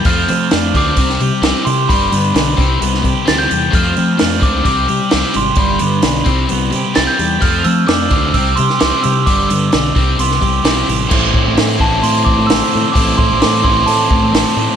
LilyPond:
<<
  \new Staff \with { instrumentName = "Glockenspiel" } { \time 4/4 \key c \major \tempo 4 = 130 f'''4. d'''8 d'''4. c'''8 | b''2. a'''16 g'''8. | f'''4. d'''8 d'''4. c'''8 | b''2. a'''16 g'''8. |
f'''8 e'''8 d'''8 d'''8 e'''8 c'''8 d'''8 e'''8 | d'''8 e'''8 d'''8 d'''8 c'''4. r8 | r4. a''8 c'''8 d'''8 e'''4 | d'''8 c'''8 d'''8 c'''8 a''2 | }
  \new Staff \with { instrumentName = "Overdriven electric guitar" } { \time 4/4 \key c \major f8 c'8 d'8 f8 c8 g'8 e'8 g'8 | g8 b8 d'8 c8 b8 g'8 e'8 g'8 | f8 c'8 d'8 f8 c8 g'8 e'8 g'8 | g8 b8 d'8 c8 b8 g'8 e'8 g'8 |
f8 c'8 d'8 f8 c8 g'8 e'8 g'8 | g8 b8 d'8 c8 b8 g'8 e'8 g'8 | <a, e a c' e'>4. <a, e a c' e'>4. <a, e a c' e'>4 | <a, e a c' e'>4. <a, e a c' e'>4. <a, e a c' e'>4 | }
  \new Staff \with { instrumentName = "Overdriven electric guitar" } { \clef bass \time 4/4 \key c \major <f a c'>8 <f a>8 <f a>8 <f a c'>8 <c g c'>8 <c g>8 <c g c'>8 <c g>8 | <g, d g>8 <g, d>8 <g, d>8 <c g c'>8 <c g>8 <c g>8 <c g c'>8 <c g>8 | <f a c'>8 <f a>8 <f a>8 <f a c'>8 <c g c'>8 <c g>8 <c g c'>8 <c g>8 | <g, d g>8 <g, d>8 <g, d>8 <c g c'>8 <c g>8 <c g>8 <c g c'>8 <c g>8 |
<f a c'>8 <f a>8 <f a>8 <f a c'>8 <c g c'>8 <c g>8 <c g c'>8 <c g>8 | <g, d g>8 <g, d>8 <g, d>8 <c g c'>8 <c g>8 <c g>8 <c g c'>8 <c g>8 | <a, e a c' e'>4. <a, e a c' e'>2~ <a, e a c' e'>8 | <a, e a c' e'>4. <a, e a c' e'>2~ <a, e a c' e'>8 | }
  \new Staff \with { instrumentName = "Fingered electric bass" } { \clef bass \time 4/4 \key c \major f,8 f8 f,8 d,8 c,8 c16 r16 c,16 r16 c8 | g,,8 g,8 b,,8 c,8 c,8 c16 r16 d,8 e,8 | f,8 f8 f,8 des,8 c,8 c16 r16 c,16 r16 aes,,8 | g,,8 g,8 b,,8 c,8 c,8 c16 r16 c,16 r16 e,8 |
f,8 f8 f,8 d,8 c,8 c16 r16 c,16 r16 c8 | g,,8 g,8 b,,8 c,8 c,8 c,8 b,,8 a,,8 | a,,8 a,16 a,,16 a,8 a,,8 a,8 a,,16 a,16 a,,16 r16 a,16 r16 | a,,8 a,16 a,,16 a,8 a,,8 a,8 a,,16 a,16 a,,16 r16 a,16 r16 | }
  \new DrumStaff \with { instrumentName = "Drums" } \drummode { \time 4/4 <hho bd>8 hho8 <hho sn>8 <hho bd>8 <hho bd>16 sn16 hho8 <hho sn>8 hho8 | <hho bd>8 hho8 <hho sn>8 <hho bd>8 hho16 sn16 <hho bd>8 <hho sn>8 hho8 | <hho bd>8 hho8 <hho sn>8 <hho bd>8 <hho bd>8 hho8 <hho sn>8 hho8 | <hho bd>8 hho8 <hho sn>8 <hho bd>8 hho8 hho8 <hho sn>8 hho8 |
<hho bd>8 hho8 <hho sn>8 <hho bd>8 <hho bd>8 hho16 sn16 <hho sn>8 hho8 | <hho bd>8 hho8 <hho sn>8 <hho bd>8 hho16 sn16 <hho bd>8 <hho sn>8 hho8 | <cymc bd>8 bd8 <hho sn>8 bd8 hho8 bd8 <hho sn>4 | <hho bd>8 bd8 <hho sn>8 bd8 hho8 bd8 <hho sn>4 | }
>>